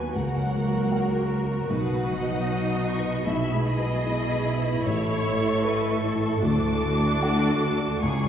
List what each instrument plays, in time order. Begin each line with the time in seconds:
Already playing: cello section D#2, felt piano D#2 F#3 F#4 B4 F#5, harp D#3 F#3 F#4 B4, viola section B3 F#4, violin section B4 G#5
0.15 felt piano C#2, cello section C#2, harp C#3, viola section A#3, violin section A#4 F#5
0.41 felt piano F#3
0.55 harp F#3, violin section A#4
0.67 felt piano A#4
0.92 harp A#4, felt piano F#5
1.19 felt piano F#4
1.32 harp F#4
1.45 felt piano A#4
1.70 felt piano B1, cello section B2, harp B2, viola section D#4, violin section B4 F#5
1.96 felt piano F#3
2.09 harp F#3, violin section D#5
2.22 felt piano B4
2.47 harp B4, felt piano D#5
2.74 felt piano F#4
2.87 harp D#4, violin section C#6
3.00 felt piano B4
3.26 felt piano B1, harp B2, viola section E4 G#4, violin section E5 B5
3.53 felt piano G#3
3.66 harp G#3, violin section D#5
3.79 felt piano B4
4.05 felt piano E4, harp B4, violin section B5
4.32 felt piano G#4
4.44 harp E4
4.59 felt piano B4
4.84 felt piano A1, harp A2, cello section A2, viola section A4, violin section C#5 C#6
5.11 felt piano A3
5.24 harp A3
5.38 felt piano E5
5.65 felt piano A4, violin section B4, harp E5
5.91 felt piano E5
6.04 harp E4, violin section A4
6.16 felt piano E4
6.42 felt piano D2, cello section D2, harp D3, viola section D4 F#4, violin section D6
6.68 felt piano A3
6.82 harp A3
6.97 felt piano D5
7.22 harp D5, felt piano F#5
7.50 felt piano A4
7.62 harp F#4
7.78 felt piano D5
8.01 cello section C#2, felt piano C#2, harp C#3, viola section E4 G#4, violin section G#4 C#6